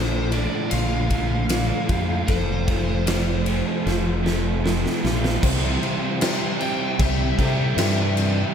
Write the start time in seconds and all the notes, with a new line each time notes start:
Already playing: A#1 A#2 D3 F3 D4 A4 C5
0.32 A3 D5, ride
0.70 A#1 D3 F3 F4 F5, ride
1.10 A#2 A3 A4, kick, ride
1.49 F3 D4, snare, ride
1.89 F2 A3 F4 G4, kick, ride
2.27 F1 F2 F3 A4 C5, kick, ride
2.66 F3 A3, kick, ride
3.06 F3 C4 A4, snare, ride
3.46 A3, ride
3.85 F1 F3 F4, snare
4.23 C3 A3 A4, snare
4.64 F3 C4, snare
4.86 snare
5.04 A#1 A3 F4 G4, snare
5.24 snare
5.41 C2 C3 E3 G3 C4 G4 C5, kick, crash
5.45 C4 E4
5.81 G3 C4 G4, crash
6.21 C3 E3 G3 C4 E4 G4 C5, snare, crash
6.60 G3 C4 E4 G4 G5, crash
6.99 C2 G4 E5, kick, crash
7.39 C3 G3 C4 E4 G4 A4, kick, crash
7.77 G2 C3 E3 G3 C4 E4 G4, snare, crash
8.17 G4, crash